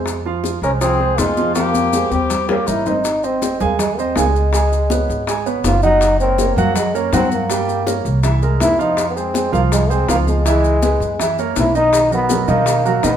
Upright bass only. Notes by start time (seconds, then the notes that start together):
Already playing: F2
0.62 C2
1.18 F2
2.11 D#2
2.68 G#1
3.61 D#2
4.16 C#2
5.10 G#1
5.64 F#1
6.56 F#2
7.12 G2
8.05 C2
8.61 F2
9.53 C2
10.08 C#2
11.00 F#2
11.56 B1
12.48 B2
13.04 A#2